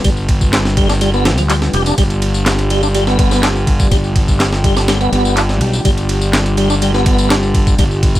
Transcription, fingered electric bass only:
0.04 G1
1.38 D2
1.74 F1
1.98 G1
3.92 G1
5.12 G1
5.61 B1
5.85 G1
7.79 G1

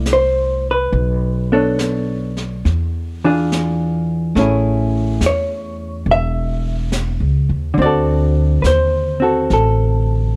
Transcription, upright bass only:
Already playing: C2
0.92 B1
2.65 E2
4.35 A1
5.21 E2
6.06 E1
7.20 C#2
7.49 D#2
7.78 D2
8.64 D#2
9.50 A1

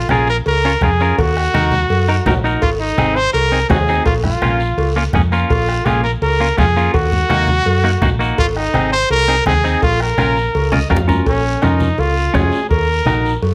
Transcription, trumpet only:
0.11 G#4
0.30 A#4
0.48 A#4
0.84 G#4
1.19 F#4
2.62 F4
2.80 D#4
3.16 C5
3.33 A#4
3.69 G#4
4.06 F4
4.24 F4
5.50 F4
5.85 G#4
6.04 A#4
6.23 A#4
6.58 G#4
6.94 F#4
8.39 F4
8.56 D#4
8.92 C5
9.11 A#4
9.47 G#4
9.83 F4
10.02 A#4
11.28 C#4
11.62 D#4
12.00 F4
12.35 G#4
12.70 A#4

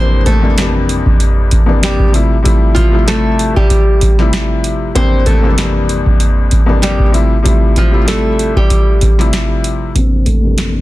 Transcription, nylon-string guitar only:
Already playing: C4 C5
0.26 A3 A4
1.84 G3 G4
2.75 F3 F4
3.08 A3 A4
3.56 G3 G4
4.96 C4 C5
5.26 A3 A4
6.82 G3 G4
7.78 F3 F4
8.08 A3 A4
8.57 G3 G4
9.97 C4 C5
10.26 A3 A4

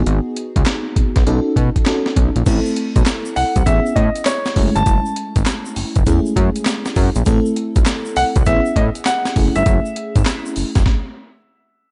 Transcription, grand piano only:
3.36 F#5
3.66 E5
3.96 D#5
4.26 C#5
4.75 A5
8.17 F#5
8.46 E5
8.76 D#5
9.06 F#5
9.56 E5

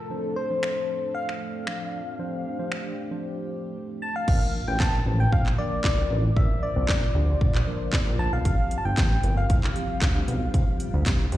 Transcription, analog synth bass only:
4.28 A#1
4.68 A1
4.80 A#1
5.06 A1
5.32 A#1
5.84 C2
6.10 A1
6.37 A#1
6.76 C2
6.89 A#1
7.15 D2
7.41 A#1
8.07 A#1
8.19 A#1
8.33 B1
8.45 C2
8.85 G1
8.98 A1
9.23 G1
9.50 C2
10.02 D2
10.28 B1
10.54 C2
10.94 D2
11.06 C2
11.32 F2

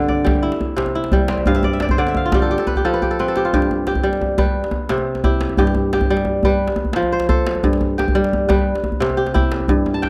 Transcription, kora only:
Already playing: G2 D3 C4 G4 A4 E5
0.08 D5
0.25 G3
0.43 E4
0.76 C3
0.95 E4
1.13 G3
1.29 C4
1.47 G2 F5
1.56 E5
1.64 D5
1.73 E5
1.82 D5
1.91 C5
1.98 D3 D5
2.08 E5
2.17 F5
2.26 F4
2.34 G3 G4
2.42 A4
2.51 G4
2.59 A4
2.67 B4
2.77 G4
2.85 F3 A4
2.94 B4
3.02 G4
3.11 A4
3.20 C4 B4
3.28 A4
3.37 G4
3.45 F4
3.54 G2 G4
3.87 G4
4.03 G3
4.38 G3 B4
4.90 C3
5.24 E4 G4
5.58 G2 G4
5.93 G4
6.10 G3
6.45 G3 B4
6.96 F3
7.12 C5
7.29 A4 C5
7.64 G2
7.98 G4
8.15 G3
8.48 G3 B4
9.00 C3
9.17 G4
9.34 E4 G4
9.69 G2
9.94 A5
10.02 G5

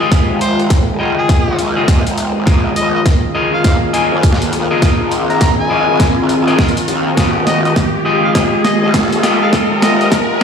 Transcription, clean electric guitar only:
0.00 F4 G4 G#4 D#5
0.11 F4 G4 G#4 D#5
0.99 F4 G#4 D#5 G5
1.76 F4 G4 G#4 D#5
2.46 F4 G#4 A#4 D#5
3.35 F4 G#4 A#4 D#5
3.93 F4 G#4 A#4 D#5
4.71 F4 G#4 A#4 D#5
4.82 F4 A#4
5.70 F4 G#4 A#4 D#5
6.47 F4 G#4 A#4 D#5
7.17 F4 G4 G#4 D#5
8.05 F4 G4 G#4 D#5
8.34 F4 G4 G#4 D#5
9.23 F4 G4 G#4 D#5
9.52 F4 G4 G#4 D#5

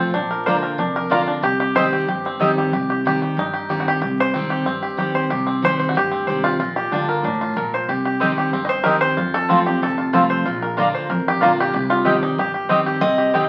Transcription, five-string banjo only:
Already playing: C5
0.00 C4
0.14 D4
0.31 A#4
0.46 C5
0.63 A#4
0.79 D4
0.96 A#4
1.12 F4
1.28 D4
1.43 G4
1.60 G4
1.76 C5
1.93 G4
2.08 G4
2.26 C4
2.41 G4
2.58 G4
2.73 G4
2.90 G4
3.07 G4
3.22 G4
3.39 D#4
3.53 G4
3.70 G4
3.80 F#4
3.88 G4
4.02 G4
4.20 C5
4.34 C4
4.50 G4
4.66 C4
4.82 G4
4.98 G4
5.15 C5
5.30 G4
5.47 C4
5.65 C5
5.79 C5
5.89 F#4
5.97 G4
6.11 C4
6.27 C5
6.44 F4
6.60 F4
6.76 G4
6.92 D4
7.09 A#4
7.25 D4
7.41 F4
7.57 A#4
7.74 C5
7.89 G4
8.05 G4
8.21 C4
8.38 G4
8.53 C4
8.65 D#5
8.69 C5
8.84 A#4
9.01 C5
9.17 F4
9.34 A4
9.50 C4
9.66 G4
9.83 A4
9.98 F4
10.13 A4
10.30 C5
10.46 F4
10.62 A#4
10.77 F4
10.94 C5
11.10 A#4
11.28 G4
11.43 F4
11.60 G4
11.74 G4
11.90 F4
12.05 G4
12.23 D#4
12.39 G4
12.54 G4
12.69 C4
12.86 G4
13.01 C4
13.18 G4
13.34 C4

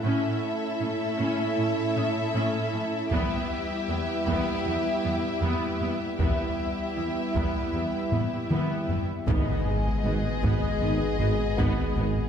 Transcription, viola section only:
0.05 C#4 E4
0.81 C#4
1.20 C#4
1.58 C#4
1.97 C#4
2.35 C#4
2.73 C#4
3.11 B3 E4
3.89 B3
4.27 B3
4.66 B3
5.04 B3
5.43 B3
5.82 B3
6.20 B3 E4
6.97 B3
7.35 B3
7.74 B3
8.12 B3
8.51 B3
8.90 B3
9.28 B3
10.05 B3
10.43 B3
10.81 B3
11.20 B3
11.58 B3
11.97 B3

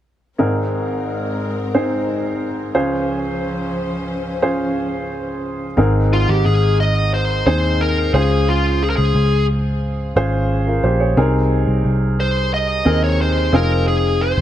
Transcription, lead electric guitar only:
6.13 F4
6.29 G4
6.46 G#4
6.80 D#5
7.14 C5
7.47 C5
7.81 A#4
8.14 G#4
8.49 F4
8.83 G#4
8.90 A#4
8.96 G#4
12.20 C5
12.54 D#5
13.04 C#5
13.21 C5
13.55 A#4
13.88 G#4
14.21 C5

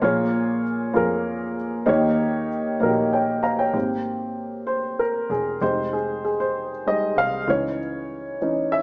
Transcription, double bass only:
0.02 A#1
0.95 F2
1.89 D#2
2.82 A#1
3.73 G#1
5.30 E1
5.61 F1
7.16 C2
7.48 C#2

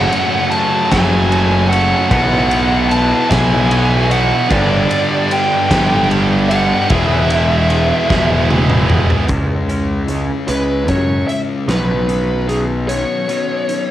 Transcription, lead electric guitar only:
Already playing: F#5
0.51 A5
0.92 G#5
1.69 F#5
2.10 F#5
2.89 A5
3.30 G#5
4.11 F#5
4.51 D5
5.32 G5
6.49 F#5
6.90 E5
10.48 B4
10.89 C#5
11.28 E5
11.70 B4
12.49 G#4
12.88 C#5

